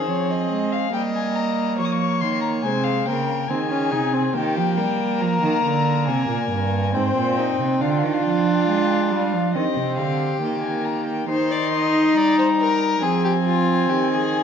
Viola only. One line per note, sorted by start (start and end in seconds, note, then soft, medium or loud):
0.09 0.92 C4 medium
0.93 2.66 A#3 medium
2.65 3.08 G#3 medium
3.07 3.49 A#3 medium
3.50 3.58 C4 medium
3.71 3.93 C#4 medium
3.92 4.15 D#4 medium
4.13 4.35 C4 medium
4.34 6.93 A#3 medium
6.94 7.83 C4 medium
7.81 9.56 D4 medium
9.55 10.42 C4 medium
10.42 11.27 A#3 medium
11.29 13.03 D#4 medium
13.01 14.43 C4 medium